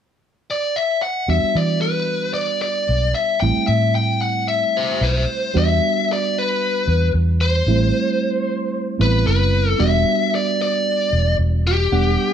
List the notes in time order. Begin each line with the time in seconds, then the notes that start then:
0.51 D5
0.76 E5
1.02 F#5
1.28 E2 G3 B3 D4 F#4 E5
1.43 muted fingered electric bass stroke
1.55 E3 D5
1.82 B4
2.34 D5
2.62 D5
2.89 B1
3.14 E5
3.40 A1 G3 A3 C4 E4 G5
3.67 A2 E5
3.95 G5
4.21 F#5
4.48 E5
4.77 C5
5.01 B1 C5
5.54 E2 G3 B3 D4 F#4 E5
6.12 D5
6.38 B4
6.88 E2
7.14 E2
7.41 C5
7.67 A1 G3 A3 C4 E4
8.99 A1 G3 B3 C4 E4 B4
9.26 F#1 B4
9.70 A4
9.79 E1 G3 B3 D4 F#4 E5
10.35 D5
10.62 D5
11.13 E1
11.39 E1
11.67 G4
11.92 E1 G3 B3 D4 F#5